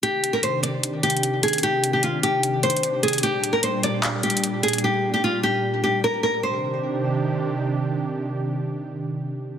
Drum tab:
HH |x-----------x-----------x-----------x-----------x-----------x---x---x---x-----------x--x--x--x--|x-----------x-----------x-----------x-----------x-----------x---x---x---x-----------x--x--x--x--|x-----------x-----------x-----------x-----------x-----------x---x---x---x-----------x--x--x--x--|------------------------------------------------------------------------------------------------|
CP |------------------------------------------------------------------------------------------------|------------------------------------------------------------------------------------------------|------------------------------------------------x-----------------------------------------------|------------------------------------------------------------------------------------------------|

HH |------------------------------------------------------------------------------------------------|------------------------------------------------------------------------------------------------|
CP |------------------------------------------------------------------------------------------------|------------------------------------------------------------------------------------------------|